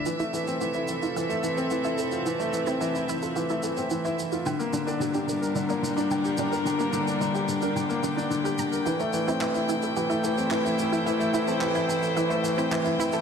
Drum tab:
SH |xxxxxxxxxxxxxxxx|xxxxxxxxxxxxxxxx|xxxxxxxxxxxxxxxx|xxxxxxxxxxxxxxxx|
CP |----------------|----------------|----------------|----------------|

SH |xxxxxxxxxxxxxxxx|xxxxxxxxxxxxxxxx|
CP |----x-------x---|----x-------x---|